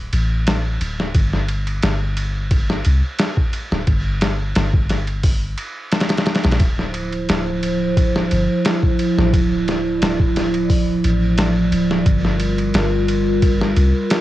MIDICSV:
0, 0, Header, 1, 4, 480
1, 0, Start_track
1, 0, Key_signature, -1, "minor"
1, 0, Tempo, 681818
1, 810, Time_signature, 4, 2, 24, 8
1, 10002, End_track
2, 0, Start_track
2, 0, Title_t, "Ambient pad"
2, 0, Program_c, 0, 92
2, 4646, Note_on_c, 0, 53, 75
2, 4647, Note_on_c, 0, 64, 71
2, 4649, Note_on_c, 0, 72, 85
2, 6551, Note_off_c, 0, 72, 0
2, 6573, Note_on_c, 0, 74, 81
2, 8460, Note_off_c, 0, 53, 0
2, 8460, Note_off_c, 0, 64, 0
2, 8472, Note_off_c, 0, 74, 0
2, 8490, Note_on_c, 0, 65, 74
2, 8490, Note_on_c, 0, 70, 85
2, 8493, Note_on_c, 0, 55, 78
2, 10002, Note_off_c, 0, 55, 0
2, 10002, Note_off_c, 0, 65, 0
2, 10002, Note_off_c, 0, 70, 0
2, 10002, End_track
3, 0, Start_track
3, 0, Title_t, "808-style bass"
3, 0, Program_c, 1, 38
3, 91, Note_on_c, 1, 33, 77
3, 549, Note_off_c, 1, 33, 0
3, 568, Note_on_c, 1, 26, 97
3, 782, Note_off_c, 1, 26, 0
3, 808, Note_on_c, 1, 31, 91
3, 1267, Note_off_c, 1, 31, 0
3, 1290, Note_on_c, 1, 31, 88
3, 1988, Note_off_c, 1, 31, 0
3, 2014, Note_on_c, 1, 36, 98
3, 2124, Note_off_c, 1, 36, 0
3, 2616, Note_on_c, 1, 26, 94
3, 2716, Note_off_c, 1, 26, 0
3, 2728, Note_on_c, 1, 31, 99
3, 3187, Note_off_c, 1, 31, 0
3, 3210, Note_on_c, 1, 31, 85
3, 3908, Note_off_c, 1, 31, 0
3, 4541, Note_on_c, 1, 34, 86
3, 4638, Note_off_c, 1, 34, 0
3, 4649, Note_on_c, 1, 26, 91
3, 5108, Note_off_c, 1, 26, 0
3, 5134, Note_on_c, 1, 26, 96
3, 5830, Note_off_c, 1, 26, 0
3, 5858, Note_on_c, 1, 31, 97
3, 5966, Note_off_c, 1, 31, 0
3, 6462, Note_on_c, 1, 33, 91
3, 6559, Note_off_c, 1, 33, 0
3, 7051, Note_on_c, 1, 26, 92
3, 7749, Note_off_c, 1, 26, 0
3, 7775, Note_on_c, 1, 33, 76
3, 8231, Note_off_c, 1, 33, 0
3, 8250, Note_on_c, 1, 26, 101
3, 8463, Note_off_c, 1, 26, 0
3, 8492, Note_on_c, 1, 31, 99
3, 8949, Note_off_c, 1, 31, 0
3, 8970, Note_on_c, 1, 31, 93
3, 9668, Note_off_c, 1, 31, 0
3, 9692, Note_on_c, 1, 36, 95
3, 9803, Note_off_c, 1, 36, 0
3, 10002, End_track
4, 0, Start_track
4, 0, Title_t, "Drums"
4, 90, Note_on_c, 9, 51, 65
4, 160, Note_off_c, 9, 51, 0
4, 329, Note_on_c, 9, 51, 83
4, 335, Note_on_c, 9, 38, 111
4, 399, Note_off_c, 9, 51, 0
4, 406, Note_off_c, 9, 38, 0
4, 570, Note_on_c, 9, 51, 64
4, 640, Note_off_c, 9, 51, 0
4, 703, Note_on_c, 9, 38, 45
4, 773, Note_off_c, 9, 38, 0
4, 806, Note_on_c, 9, 36, 104
4, 806, Note_on_c, 9, 51, 86
4, 877, Note_off_c, 9, 36, 0
4, 877, Note_off_c, 9, 51, 0
4, 939, Note_on_c, 9, 38, 36
4, 1009, Note_off_c, 9, 38, 0
4, 1045, Note_on_c, 9, 51, 63
4, 1115, Note_off_c, 9, 51, 0
4, 1175, Note_on_c, 9, 51, 42
4, 1246, Note_off_c, 9, 51, 0
4, 1285, Note_on_c, 9, 51, 76
4, 1291, Note_on_c, 9, 38, 100
4, 1355, Note_off_c, 9, 51, 0
4, 1362, Note_off_c, 9, 38, 0
4, 1526, Note_on_c, 9, 51, 67
4, 1597, Note_off_c, 9, 51, 0
4, 1765, Note_on_c, 9, 51, 84
4, 1766, Note_on_c, 9, 36, 103
4, 1836, Note_off_c, 9, 36, 0
4, 1836, Note_off_c, 9, 51, 0
4, 1899, Note_on_c, 9, 38, 54
4, 1969, Note_off_c, 9, 38, 0
4, 2003, Note_on_c, 9, 51, 65
4, 2074, Note_off_c, 9, 51, 0
4, 2242, Note_on_c, 9, 51, 86
4, 2249, Note_on_c, 9, 38, 112
4, 2313, Note_off_c, 9, 51, 0
4, 2319, Note_off_c, 9, 38, 0
4, 2372, Note_on_c, 9, 36, 92
4, 2443, Note_off_c, 9, 36, 0
4, 2484, Note_on_c, 9, 51, 66
4, 2555, Note_off_c, 9, 51, 0
4, 2618, Note_on_c, 9, 38, 46
4, 2689, Note_off_c, 9, 38, 0
4, 2724, Note_on_c, 9, 51, 86
4, 2726, Note_on_c, 9, 36, 99
4, 2794, Note_off_c, 9, 51, 0
4, 2796, Note_off_c, 9, 36, 0
4, 2964, Note_on_c, 9, 51, 71
4, 2971, Note_on_c, 9, 38, 96
4, 3035, Note_off_c, 9, 51, 0
4, 3041, Note_off_c, 9, 38, 0
4, 3205, Note_on_c, 9, 51, 74
4, 3212, Note_on_c, 9, 38, 94
4, 3276, Note_off_c, 9, 51, 0
4, 3282, Note_off_c, 9, 38, 0
4, 3333, Note_on_c, 9, 36, 90
4, 3404, Note_off_c, 9, 36, 0
4, 3446, Note_on_c, 9, 51, 66
4, 3452, Note_on_c, 9, 38, 44
4, 3516, Note_off_c, 9, 51, 0
4, 3522, Note_off_c, 9, 38, 0
4, 3572, Note_on_c, 9, 51, 43
4, 3642, Note_off_c, 9, 51, 0
4, 3685, Note_on_c, 9, 46, 75
4, 3687, Note_on_c, 9, 36, 106
4, 3756, Note_off_c, 9, 46, 0
4, 3758, Note_off_c, 9, 36, 0
4, 3927, Note_on_c, 9, 51, 61
4, 3997, Note_off_c, 9, 51, 0
4, 4166, Note_on_c, 9, 51, 67
4, 4172, Note_on_c, 9, 38, 90
4, 4227, Note_off_c, 9, 51, 0
4, 4227, Note_on_c, 9, 51, 67
4, 4234, Note_off_c, 9, 38, 0
4, 4234, Note_on_c, 9, 38, 84
4, 4289, Note_off_c, 9, 51, 0
4, 4289, Note_on_c, 9, 51, 68
4, 4296, Note_off_c, 9, 38, 0
4, 4296, Note_on_c, 9, 38, 79
4, 4348, Note_off_c, 9, 51, 0
4, 4348, Note_on_c, 9, 51, 62
4, 4354, Note_off_c, 9, 38, 0
4, 4354, Note_on_c, 9, 38, 82
4, 4406, Note_off_c, 9, 51, 0
4, 4406, Note_on_c, 9, 51, 59
4, 4412, Note_off_c, 9, 38, 0
4, 4412, Note_on_c, 9, 38, 80
4, 4469, Note_off_c, 9, 51, 0
4, 4469, Note_on_c, 9, 51, 68
4, 4475, Note_off_c, 9, 38, 0
4, 4475, Note_on_c, 9, 38, 82
4, 4532, Note_off_c, 9, 51, 0
4, 4532, Note_on_c, 9, 51, 55
4, 4539, Note_off_c, 9, 38, 0
4, 4539, Note_on_c, 9, 38, 77
4, 4587, Note_off_c, 9, 51, 0
4, 4587, Note_on_c, 9, 51, 62
4, 4593, Note_off_c, 9, 38, 0
4, 4593, Note_on_c, 9, 38, 77
4, 4645, Note_off_c, 9, 51, 0
4, 4645, Note_on_c, 9, 51, 84
4, 4647, Note_on_c, 9, 36, 105
4, 4663, Note_off_c, 9, 38, 0
4, 4716, Note_off_c, 9, 51, 0
4, 4718, Note_off_c, 9, 36, 0
4, 4781, Note_on_c, 9, 38, 37
4, 4852, Note_off_c, 9, 38, 0
4, 4886, Note_on_c, 9, 51, 59
4, 4956, Note_off_c, 9, 51, 0
4, 5016, Note_on_c, 9, 51, 40
4, 5086, Note_off_c, 9, 51, 0
4, 5130, Note_on_c, 9, 51, 77
4, 5137, Note_on_c, 9, 38, 112
4, 5201, Note_off_c, 9, 51, 0
4, 5207, Note_off_c, 9, 38, 0
4, 5371, Note_on_c, 9, 51, 65
4, 5441, Note_off_c, 9, 51, 0
4, 5611, Note_on_c, 9, 36, 101
4, 5613, Note_on_c, 9, 51, 81
4, 5682, Note_off_c, 9, 36, 0
4, 5683, Note_off_c, 9, 51, 0
4, 5744, Note_on_c, 9, 38, 54
4, 5814, Note_off_c, 9, 38, 0
4, 5851, Note_on_c, 9, 51, 64
4, 5922, Note_off_c, 9, 51, 0
4, 6089, Note_on_c, 9, 51, 83
4, 6095, Note_on_c, 9, 38, 114
4, 6160, Note_off_c, 9, 51, 0
4, 6166, Note_off_c, 9, 38, 0
4, 6217, Note_on_c, 9, 36, 96
4, 6287, Note_off_c, 9, 36, 0
4, 6330, Note_on_c, 9, 51, 65
4, 6400, Note_off_c, 9, 51, 0
4, 6466, Note_on_c, 9, 38, 47
4, 6537, Note_off_c, 9, 38, 0
4, 6571, Note_on_c, 9, 36, 100
4, 6572, Note_on_c, 9, 51, 81
4, 6641, Note_off_c, 9, 36, 0
4, 6643, Note_off_c, 9, 51, 0
4, 6814, Note_on_c, 9, 51, 62
4, 6820, Note_on_c, 9, 38, 41
4, 6884, Note_off_c, 9, 51, 0
4, 6890, Note_off_c, 9, 38, 0
4, 7053, Note_on_c, 9, 51, 79
4, 7059, Note_on_c, 9, 38, 111
4, 7123, Note_off_c, 9, 51, 0
4, 7129, Note_off_c, 9, 38, 0
4, 7178, Note_on_c, 9, 36, 92
4, 7248, Note_off_c, 9, 36, 0
4, 7294, Note_on_c, 9, 51, 67
4, 7300, Note_on_c, 9, 38, 42
4, 7364, Note_off_c, 9, 51, 0
4, 7370, Note_off_c, 9, 38, 0
4, 7419, Note_on_c, 9, 51, 41
4, 7490, Note_off_c, 9, 51, 0
4, 7530, Note_on_c, 9, 36, 98
4, 7531, Note_on_c, 9, 46, 75
4, 7601, Note_off_c, 9, 36, 0
4, 7601, Note_off_c, 9, 46, 0
4, 7773, Note_on_c, 9, 51, 64
4, 7844, Note_off_c, 9, 51, 0
4, 8009, Note_on_c, 9, 51, 90
4, 8015, Note_on_c, 9, 38, 112
4, 8079, Note_off_c, 9, 51, 0
4, 8085, Note_off_c, 9, 38, 0
4, 8252, Note_on_c, 9, 51, 68
4, 8322, Note_off_c, 9, 51, 0
4, 8384, Note_on_c, 9, 38, 49
4, 8454, Note_off_c, 9, 38, 0
4, 8490, Note_on_c, 9, 36, 102
4, 8490, Note_on_c, 9, 51, 86
4, 8560, Note_off_c, 9, 36, 0
4, 8560, Note_off_c, 9, 51, 0
4, 8622, Note_on_c, 9, 38, 38
4, 8692, Note_off_c, 9, 38, 0
4, 8727, Note_on_c, 9, 51, 65
4, 8797, Note_off_c, 9, 51, 0
4, 8858, Note_on_c, 9, 51, 39
4, 8928, Note_off_c, 9, 51, 0
4, 8969, Note_on_c, 9, 51, 83
4, 8976, Note_on_c, 9, 38, 108
4, 9040, Note_off_c, 9, 51, 0
4, 9046, Note_off_c, 9, 38, 0
4, 9211, Note_on_c, 9, 51, 67
4, 9281, Note_off_c, 9, 51, 0
4, 9450, Note_on_c, 9, 36, 102
4, 9450, Note_on_c, 9, 51, 80
4, 9520, Note_off_c, 9, 51, 0
4, 9521, Note_off_c, 9, 36, 0
4, 9585, Note_on_c, 9, 38, 56
4, 9655, Note_off_c, 9, 38, 0
4, 9691, Note_on_c, 9, 51, 64
4, 9762, Note_off_c, 9, 51, 0
4, 9929, Note_on_c, 9, 51, 91
4, 9936, Note_on_c, 9, 38, 108
4, 10000, Note_off_c, 9, 51, 0
4, 10002, Note_off_c, 9, 38, 0
4, 10002, End_track
0, 0, End_of_file